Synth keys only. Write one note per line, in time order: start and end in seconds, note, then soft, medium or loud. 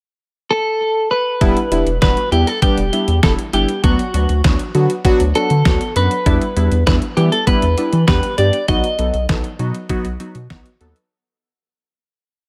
1.41 1.58 G3 loud
1.41 1.58 B3 loud
1.41 1.58 D4 loud
1.41 1.58 E4 loud
1.72 1.88 G3 medium
1.72 1.89 B3 medium
1.72 1.89 D4 medium
1.72 1.88 E4 medium
2.02 2.19 G3 medium
2.02 2.19 B3 medium
2.02 2.19 D4 medium
2.02 2.19 F#4 medium
2.32 2.49 G3 medium
2.32 2.49 B3 medium
2.32 2.49 D4 medium
2.32 2.49 E4 medium
2.62 2.79 G3 medium
2.62 2.79 B3 medium
2.62 2.79 D4 medium
2.62 2.79 G4 loud
2.93 3.10 G3 medium
2.93 3.10 B3 medium
2.93 3.10 D4 medium
2.93 3.10 E4 medium
3.23 3.40 G3 medium
3.23 3.40 B3 medium
3.23 3.40 D4 medium
3.23 3.40 E4 medium
3.53 3.70 G3 medium
3.53 3.70 B3 medium
3.53 3.70 D4 medium
3.53 3.70 E4 medium
3.84 4.01 F#3 medium
3.84 4.01 B3 medium
3.84 4.01 D4 medium
3.84 4.01 F#4 loud
4.14 4.31 F#3 medium
4.14 4.31 B3 medium
4.14 4.31 D4 medium
4.14 4.31 F#4 medium
4.44 4.61 F#3 medium
4.44 4.61 B3 medium
4.44 4.61 D4 medium
4.44 4.61 F#4 medium
4.75 4.92 F#3 medium
4.75 4.92 B3 medium
4.75 4.92 D4 medium
4.75 4.92 F#4 medium
5.05 5.22 F#3 loud
5.05 5.22 B3 loud
5.05 5.22 D4 loud
5.05 5.22 F#4 loud
5.35 5.52 F#3 medium
5.35 5.52 B3 medium
5.35 5.52 D4 medium
5.35 5.52 F#4 medium
5.65 5.82 F#3 medium
5.65 5.82 B3 medium
5.65 5.82 D4 medium
5.65 5.82 F#4 medium
5.96 6.13 F#3 medium
5.96 6.13 B3 medium
5.96 6.13 D4 medium
5.96 6.13 F#4 medium
6.26 6.43 G3 medium
6.26 6.43 B3 medium
6.26 6.43 D4 medium
6.26 6.43 E4 loud
6.56 6.73 G3 medium
6.56 6.73 B3 medium
6.56 6.73 D4 medium
6.56 6.73 E4 medium
6.86 7.04 G3 medium
6.86 7.04 B3 medium
6.86 7.04 D4 medium
6.86 7.03 E4 medium
7.17 7.34 G3 medium
7.17 7.34 B3 medium
7.17 7.34 D4 medium
7.17 7.34 E4 medium
7.47 7.64 G3 medium
7.47 7.64 B3 medium
7.47 7.64 D4 medium
7.47 7.64 E4 loud
7.78 7.95 G3 medium
7.78 7.95 B3 medium
7.78 7.95 D4 medium
7.78 7.95 E4 medium
8.08 8.25 G3 medium
8.08 8.25 B3 medium
8.08 8.25 D4 medium
8.08 8.25 G4 medium
8.38 8.55 G3 medium
8.38 8.55 B3 medium
8.38 8.55 D4 medium
8.38 8.55 G4 medium
8.68 8.85 F#3 medium
8.68 8.85 B3 medium
8.68 8.85 D#4 medium
8.68 8.85 F#4 loud
8.99 9.16 F#3 medium
8.99 9.16 B3 medium
8.99 9.16 D#4 medium
8.99 9.16 A4 medium
9.29 9.46 F#3 medium
9.29 9.46 B3 medium
9.29 9.46 D#4 medium
9.29 9.46 A4 medium
9.59 9.76 F#3 medium
9.59 9.76 B3 medium
9.59 9.76 D#4 medium
9.59 9.76 F#4 loud
9.90 10.07 F#3 loud
9.90 10.07 B3 loud
9.90 10.07 D#4 loud
9.90 10.07 F#4 loud
10.20 10.37 F#3 medium
10.20 10.37 B3 medium
10.20 10.37 D#4 medium
10.20 10.37 F#4 loud
10.50 10.67 F#3 medium
10.50 10.67 B3 medium
10.50 10.67 D#4 medium
10.50 10.67 F#4 medium
10.80 10.97 F#3 medium
10.80 10.98 B3 medium
10.80 10.98 D#4 medium
10.80 10.98 A4 medium